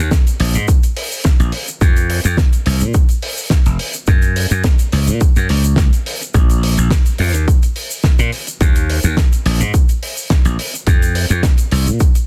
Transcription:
0.11 kick, snare, closed hi-hat, shaker
0.27 closed hi-hat, shaker
0.40 A#1, open hi-hat
0.54 G#2, closed hi-hat, shaker
0.68 kick, closed hi-hat, shaker
0.83 closed hi-hat, shaker
0.97 open hi-hat
1.12 shaker
1.24 kick, snare, closed hi-hat, shaker
1.40 A#1, closed hi-hat, shaker
1.52 open hi-hat
1.68 closed hi-hat, shaker
1.81 F2, kick, closed hi-hat, shaker
1.97 closed hi-hat, shaker
2.10 open hi-hat
2.24 F2, closed hi-hat, shaker
2.37 kick, snare, closed hi-hat, shaker
2.53 closed hi-hat, shaker
2.66 C2, open hi-hat
2.81 A#2, closed hi-hat, shaker
2.94 kick, closed hi-hat, shaker
3.09 closed hi-hat, shaker
3.22 open hi-hat
3.37 shaker
3.50 kick, snare, closed hi-hat, shaker
3.66 F1, closed hi-hat, shaker
3.79 open hi-hat
3.93 closed hi-hat, shaker
4.07 F#2, kick, closed hi-hat, shaker
4.22 closed hi-hat, shaker
4.36 open hi-hat
4.50 F#2, closed hi-hat, shaker
4.64 kick, snare, closed hi-hat, shaker
4.79 closed hi-hat, shaker
4.92 C#2, open hi-hat
5.08 A#2, closed hi-hat, shaker
5.21 kick, closed hi-hat, shaker
5.36 F#2, closed hi-hat, shaker
5.49 C#2, open hi-hat
5.64 closed hi-hat, shaker
5.76 kick, snare, closed hi-hat, shaker
5.93 closed hi-hat, shaker
6.06 open hi-hat
6.22 closed hi-hat, shaker
6.34 A#1, kick, closed hi-hat, shaker
6.50 closed hi-hat, shaker
6.63 open hi-hat
6.77 A#1, closed hi-hat, shaker
6.91 kick, snare, closed hi-hat, shaker
7.06 closed hi-hat, shaker
7.18 F2, open hi-hat
7.34 D#2, closed hi-hat, shaker
7.48 kick, closed hi-hat, shaker
7.63 closed hi-hat, shaker
7.76 open hi-hat
7.91 shaker
8.04 kick, snare, closed hi-hat, shaker
8.19 A#2, closed hi-hat, shaker
8.32 open hi-hat
8.47 closed hi-hat, shaker
8.61 D#2, kick, closed hi-hat, shaker
8.76 closed hi-hat, shaker
8.90 open hi-hat
9.04 D#2, closed hi-hat, shaker
9.17 kick, snare, closed hi-hat, shaker
9.33 closed hi-hat, shaker
9.46 A#1, open hi-hat
9.60 G#2, closed hi-hat, shaker
9.74 kick, closed hi-hat, shaker
9.89 closed hi-hat, shaker
10.03 open hi-hat
10.17 shaker
10.30 kick, snare, closed hi-hat, shaker
10.45 A#1, closed hi-hat, shaker
10.59 open hi-hat
10.74 closed hi-hat, shaker
10.87 F2, kick, closed hi-hat, shaker
11.02 closed hi-hat, shaker
11.15 open hi-hat
11.30 F2, closed hi-hat, shaker
11.43 kick, snare, closed hi-hat, shaker
11.58 closed hi-hat, shaker
11.71 C2, open hi-hat
11.87 A#2, closed hi-hat, shaker
12.00 kick, closed hi-hat, shaker
12.15 closed hi-hat, shaker

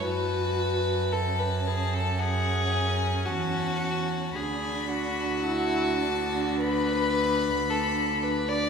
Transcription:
0.02 F#2 F#4 B4 A5
1.11 C#4 A4 A5
1.40 B4
1.67 G#4
1.94 A4
2.19 G#4 F#5
2.72 G#5
3.26 E2 F#4 A5
4.35 D2 D4 G#4 B5
4.88 F#4
5.43 E4 A5
6.00 D4
6.60 B4 B5
7.70 D4 A4
8.23 B4
8.49 D5

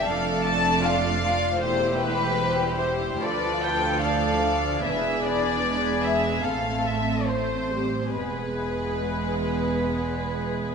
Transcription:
0.04 F1 F2 A3 D4 A4 D5 F5
0.46 A5
0.82 F4 F5
1.24 F4
1.61 E1 E2 A3 E4 G4 C5
2.01 B4
2.40 G3 E4
2.80 C5
3.21 D2 F3 F4 A4 B4 D5
3.63 G5
4.02 D4 D5 F5
4.43 D4
4.82 E1 E2 E3 G#4 B4 E5
5.24 D5
5.62 G#3 B4
6.03 G#3 E5
6.43 A1 A2 A3 C4 A4 F5
6.86 E5
7.27 A3 C5
7.71 G3
8.14 E1 E2 G#3 B3 G#4 B4

